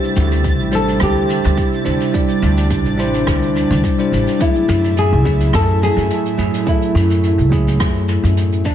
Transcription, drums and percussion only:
0.03 closed hi-hat soft
0.16 shaker medium
0.31 closed hi-hat soft
0.31 shaker medium
0.44 kick loud
0.44 closed hi-hat medium
0.44 shaker soft
0.72 shaker medium
0.88 closed hi-hat medium
0.88 shaker medium
1.00 kick loud
1.00 cross-stick medium
1.00 closed hi-hat medium
1.00 shaker medium
1.30 shaker medium
1.44 closed hi-hat medium
1.44 shaker medium
1.57 kick medium
1.57 closed hi-hat medium
1.57 shaker soft
1.73 closed hi-hat soft
1.86 shaker medium
2.00 closed hi-hat medium
2.00 shaker medium
2.14 kick loud
2.14 closed hi-hat medium
2.14 shaker soft
2.28 closed hi-hat soft
2.42 shaker medium
2.58 closed hi-hat medium
2.58 shaker medium
2.70 kick loud
2.70 closed hi-hat medium
2.70 shaker soft
2.85 closed hi-hat soft
2.99 shaker medium
3.14 closed hi-hat medium
3.14 shaker medium
3.27 kick loud
3.27 cross-stick medium
3.27 closed hi-hat medium
3.27 shaker medium
3.42 closed hi-hat soft
3.57 shaker medium
3.70 closed hi-hat medium
3.70 shaker medium
3.84 kick medium
3.84 closed hi-hat medium
3.84 shaker soft
3.98 closed hi-hat medium
4.13 shaker medium
4.27 closed hi-hat medium
4.27 shaker medium
4.40 kick loud
4.40 closed hi-hat medium
4.40 shaker soft
4.55 closed hi-hat soft
4.69 shaker medium
4.84 closed hi-hat medium
4.84 shaker medium
4.97 closed hi-hat medium
4.97 shaker soft
5.26 kick medium
5.26 shaker medium
5.40 closed hi-hat medium
5.40 shaker medium
5.53 kick loud
5.53 cross-stick medium
5.53 closed hi-hat medium
5.53 shaker soft
5.83 shaker medium
5.97 closed hi-hat medium
5.97 shaker medium
6.10 closed hi-hat medium
6.10 shaker soft
6.25 closed hi-hat soft
6.38 shaker medium
6.54 closed hi-hat medium
6.54 shaker medium
6.66 kick loud
6.66 closed hi-hat medium
6.66 shaker soft
6.82 closed hi-hat soft
6.96 shaker loud
7.10 closed hi-hat medium
7.10 shaker medium
7.23 closed hi-hat medium
7.23 shaker soft
7.39 closed hi-hat medium
7.52 kick loud
7.52 shaker medium
7.67 closed hi-hat medium
7.67 shaker medium
7.79 kick loud
7.79 cross-stick medium
7.79 closed hi-hat medium
7.79 shaker soft
8.09 shaker medium
8.24 closed hi-hat medium
8.24 shaker medium
8.37 closed hi-hat medium
8.37 shaker soft
8.52 closed hi-hat medium
8.65 kick medium
8.65 shaker medium

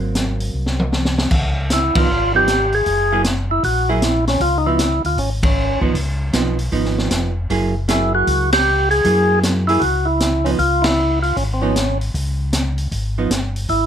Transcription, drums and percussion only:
0.15 snare medium
0.15 closed hi-hat soft
0.40 open hi-hat soft
0.66 snare soft
0.79 mid tom medium
0.92 snare medium
1.05 snare medium
1.18 snare medium
1.31 kick medium
1.31 crash medium
1.70 snare medium
1.70 closed hi-hat soft
1.95 kick medium
1.95 ride medium
2.48 snare medium
2.48 closed hi-hat soft
2.72 open hi-hat soft
2.86 kick soft
2.86 open hi-hat soft
3.24 snare medium
3.24 closed hi-hat soft
3.63 kick soft
3.63 open hi-hat soft
4.02 snare medium
4.02 closed hi-hat soft
4.27 snare soft
4.27 open hi-hat soft
4.40 kick soft
4.40 open hi-hat soft
4.79 snare medium
4.79 closed hi-hat medium
5.05 open hi-hat soft
5.17 kick soft
5.17 open hi-hat soft
5.43 kick medium
5.43 ride medium
5.81 kick soft
5.95 kick soft
5.95 open hi-hat soft
6.33 snare medium
6.33 closed hi-hat medium
6.59 open hi-hat soft
6.72 kick soft
6.72 open hi-hat soft
6.85 snare soft
6.98 snare soft
7.11 snare medium
7.11 closed hi-hat medium
7.50 kick soft
7.50 open hi-hat soft
7.88 snare medium
7.88 closed hi-hat medium
8.27 kick soft
8.27 open hi-hat soft
8.53 snare medium
8.53 ride medium
8.91 open hi-hat soft
9.04 kick soft
9.04 open hi-hat soft
9.43 snare medium
9.43 closed hi-hat medium
9.69 open hi-hat soft
9.81 kick soft
9.81 open hi-hat soft
10.20 snare medium
10.20 closed hi-hat medium
10.46 open hi-hat soft
10.59 kick soft
10.59 open hi-hat soft
10.84 snare medium
10.84 ride medium
11.23 open hi-hat soft
11.37 kick soft
11.37 open hi-hat soft
11.76 snare medium
11.76 closed hi-hat soft
12.01 open hi-hat soft
12.14 kick soft
12.14 open hi-hat soft
12.53 snare medium
12.53 closed hi-hat medium
12.78 open hi-hat soft
12.91 kick soft
12.91 open hi-hat soft
13.31 snare medium
13.31 closed hi-hat medium
13.56 open hi-hat soft
13.69 kick soft
13.69 open hi-hat soft

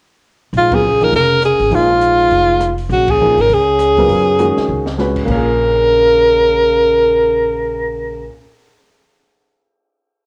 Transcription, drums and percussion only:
0.53 open hi-hat soft
0.71 kick medium
0.71 ride medium
1.01 open hi-hat soft
1.13 open hi-hat soft
1.42 cross-stick medium
1.42 closed hi-hat soft
1.59 open hi-hat soft
1.71 open hi-hat soft
2.01 closed hi-hat soft
2.19 open hi-hat soft
2.31 open hi-hat soft
2.60 cross-stick medium
2.60 closed hi-hat medium
2.78 open hi-hat soft
2.90 open hi-hat soft
3.08 kick medium
3.08 ride medium
3.38 open hi-hat soft
3.49 open hi-hat soft
3.79 cross-stick medium
3.79 closed hi-hat soft
3.97 kick medium
3.97 open hi-hat soft
4.09 open hi-hat soft
4.39 closed hi-hat soft
4.57 snare soft
4.86 snare medium
4.98 snare medium
5.16 kick medium
5.16 crash medium
5.28 kick medium
5.28 crash medium
5.46 cymbal swell soft

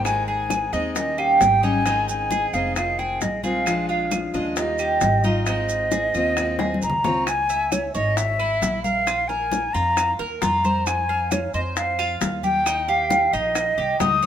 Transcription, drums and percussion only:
0.05 high bongo medium
0.05 claves medium
0.05 maracas medium
0.28 high conga soft
0.50 high bongo medium
0.50 high conga medium
0.50 claves medium
0.50 maracas medium
0.73 high conga soft
0.73 maracas soft
0.96 high bongo medium
0.96 high conga soft
0.96 maracas medium
1.18 high conga soft
1.18 claves medium
1.41 high bongo medium
1.41 low bongo medium
1.41 high conga medium
1.41 maracas medium
1.63 high conga medium
1.63 maracas soft
1.86 high bongo medium
1.86 claves medium
1.86 maracas medium
2.08 high bongo soft
2.08 high conga soft
2.08 maracas medium
2.31 high bongo medium
2.31 high conga medium
2.31 maracas medium
2.54 high conga soft
2.54 maracas soft
2.76 high bongo medium
2.76 high conga soft
2.76 claves medium
2.76 maracas medium
2.99 high bongo soft
2.99 high conga soft
3.21 high bongo medium
3.21 low bongo medium
3.21 high conga medium
3.21 maracas medium
3.43 high bongo soft
3.43 high conga medium
3.43 maracas soft
3.66 high bongo medium
3.66 high conga soft
3.66 claves medium
3.66 maracas medium
3.89 high conga soft
4.11 high bongo medium
4.11 high conga medium
4.11 claves medium
4.11 maracas medium
4.34 high conga soft
4.34 maracas soft
4.56 high bongo medium
4.56 high conga soft
4.56 maracas medium
4.78 high conga soft
4.78 claves medium
4.78 maracas medium
5.01 high bongo medium
5.01 low bongo medium
5.01 high conga medium
5.01 maracas medium
5.24 high conga medium
5.24 maracas soft
5.46 high bongo medium
5.46 claves medium
5.46 maracas medium
5.69 high bongo soft
5.69 high conga soft
5.69 maracas medium
5.91 high bongo medium
5.91 high conga medium
5.91 maracas medium
6.14 high conga soft
6.14 maracas soft
6.37 high bongo medium
6.37 high conga soft
6.37 claves medium
6.37 maracas medium
6.59 high bongo medium
6.59 high conga medium
6.74 high conga medium
6.82 maracas medium
6.90 low conga medium
7.04 low bongo medium
7.04 low conga medium
7.04 maracas soft
7.27 high bongo medium
7.27 high conga soft
7.27 claves medium
7.27 maracas medium
7.49 high conga soft
7.49 maracas medium
7.72 high bongo medium
7.72 high conga medium
7.72 claves medium
7.72 maracas medium
7.95 high conga soft
7.95 maracas soft
8.17 high bongo medium
8.17 high conga soft
8.17 maracas medium
8.39 high conga soft
8.39 claves medium
8.62 high bongo medium
8.62 low bongo medium
8.62 high conga medium
8.62 maracas medium
8.84 high conga medium
8.84 maracas soft
9.07 high bongo medium
9.07 high conga soft
9.07 claves medium
9.07 maracas medium
9.29 high bongo soft
9.29 high conga soft
9.52 high bongo medium
9.52 high conga medium
9.52 maracas medium
9.74 high conga soft
9.74 maracas soft
9.97 high bongo medium
9.97 high conga soft
9.97 claves medium
9.97 maracas medium
10.20 high bongo soft
10.20 high conga soft
10.42 high bongo medium
10.42 low bongo medium
10.42 high conga medium
10.42 maracas medium
10.64 high bongo soft
10.64 high conga medium
10.64 maracas soft
10.86 high bongo medium
10.86 claves medium
10.86 maracas medium
11.10 high conga soft
11.31 high bongo medium
11.31 high conga loud
11.31 claves medium
11.31 maracas medium
11.54 high conga soft
11.54 maracas soft
11.76 high bongo medium
11.76 high conga soft
11.76 maracas medium
11.99 high conga soft
11.99 claves medium
12.21 high bongo medium
12.21 low bongo medium
12.21 high conga medium
12.21 maracas medium
12.43 high conga medium
12.43 maracas soft
12.66 high bongo medium
12.66 high conga soft
12.66 claves medium
12.66 maracas medium
12.88 high bongo soft
12.88 high conga soft
13.10 high bongo medium
13.10 high conga medium
13.10 maracas medium
13.33 high conga soft
13.33 maracas soft
13.55 high bongo medium
13.55 high conga soft
13.55 claves medium
13.55 maracas medium
13.78 high bongo soft
13.78 high conga soft
14.00 high bongo medium
14.00 low bongo medium
14.00 high conga medium
14.00 maracas medium
14.23 high bongo soft
14.23 high conga medium
14.23 maracas soft

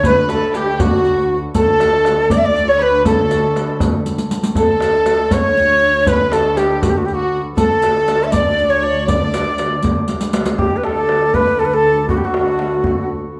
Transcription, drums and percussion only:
0.04 riq medium
0.04 tombak dum medium
0.29 riq soft
0.29 tombak tek medium
0.54 riq soft
0.54 tombak tek medium
0.80 riq medium
0.80 tombak dum medium
1.05 riq soft
1.54 riq medium
1.54 tombak dum medium
1.80 riq medium
1.80 tombak tek medium
2.05 riq soft
2.05 tombak tek medium
2.30 riq medium
2.30 tombak dum medium
2.57 riq soft
3.05 riq medium
3.05 tombak dum medium
3.31 riq medium
3.31 tombak tek medium
3.56 riq soft
3.56 tombak tek medium
3.80 riq medium
3.80 tombak dum medium
4.06 riq medium
4.06 tombak ka soft
4.18 riq medium
4.31 riq medium
4.31 tombak ka soft
4.43 riq medium
4.55 riq medium
4.55 tombak dum medium
4.81 riq soft
4.81 tombak tek medium
5.06 riq soft
5.06 tombak tek medium
5.31 riq medium
5.31 tombak dum medium
5.57 riq soft
6.07 riq medium
6.07 tombak dum medium
6.32 riq medium
6.32 tombak tek medium
6.57 riq medium
6.57 tombak tek medium
6.83 riq medium
6.83 tombak dum medium
7.08 riq soft
7.57 riq medium
7.57 tombak dum medium
7.82 riq medium
7.82 tombak tek medium
8.08 riq soft
8.08 tombak tek medium
8.32 riq medium
8.32 tombak dum medium
8.58 riq soft
9.08 riq medium
9.08 tombak dum medium
9.34 riq medium
9.34 tombak tek medium
9.58 riq soft
9.58 tombak tek medium
9.82 riq medium
9.82 tombak dum medium
10.08 riq soft
10.08 tombak tek soft
10.21 riq medium
10.21 tombak ka medium
10.33 riq medium
10.33 tombak tek medium
10.45 riq medium
10.45 tombak ka medium
10.59 tombak dum medium
10.84 tombak tek medium
11.09 tombak tek medium
11.34 tombak dum medium
11.84 tombak ka soft
12.09 tombak dum medium
12.34 tombak tek medium
12.59 tombak tek medium
12.84 tombak dum medium

